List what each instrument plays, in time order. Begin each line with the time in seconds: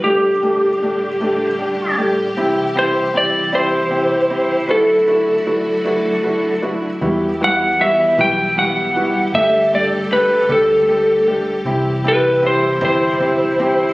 Already playing: string section G3
0.04 string section A2 D3 D4 G4, felt piano A3 D4 G4, electric slide guitar G4
0.43 felt piano A3 D4 G4
0.82 felt piano A3 D4 G4
1.21 felt piano A3 D4 G4
1.59 felt piano D4 G4
1.98 felt piano A3 D4 G4
2.37 string section C3 E3 E4, felt piano C4 E4 G4
2.75 felt piano C4 E4 G4, electric slide guitar C5
3.14 felt piano C4 E4 G4, electric slide guitar D5
3.52 felt piano C4 E4 G4, electric slide guitar C5
3.91 felt piano C4 E4 G4
4.30 felt piano C4 E4 G4
4.68 string section D3 F#3 A3 F#4, felt piano D4 E4 F#4, electric slide guitar A4
5.07 felt piano D4 E4 F#4
5.46 felt piano D4 E4 F#4
5.85 felt piano D4 E4 F#4
6.23 felt piano D4 E4 F#4
6.62 felt piano D4 E4 F#4
7.01 fingered electric bass E2, string section E3 G3 B3 E4 G4, felt piano G3 E4 F#4
7.41 felt piano G3 E4 F#4, electric slide guitar F#5
7.80 felt piano G3 E4 F#4, electric slide guitar E5
8.18 fingered electric bass B1, felt piano G3 E4 F#4, electric slide guitar G5
8.57 felt piano G3 E4 F#4, electric slide guitar F#5
8.96 felt piano G3 E4 F#4
9.34 fingered electric bass G1, string section D3 A3 A4, felt piano A3 D4 G4, electric slide guitar E5
9.73 felt piano A3 D4 G4, electric slide guitar D5
10.11 felt piano A3 D4 G4, electric slide guitar B4
10.49 fingered electric bass D2, felt piano A3 D4 G4, electric slide guitar A4
10.88 felt piano A3 D4 G4
11.27 felt piano A3 D4 G4
11.65 fingered electric bass C2, string section C3 E3 G3 E4, felt piano C4 E4 G4
12.04 felt piano C4 E4 G4
12.08 electric slide guitar B4
12.42 felt piano C4 E4 G4
12.46 electric slide guitar C5
12.81 fingered electric bass G1, felt piano C4 E4 G4, electric slide guitar C5
13.20 felt piano C4 E4 G4
13.59 felt piano C4 E4 G4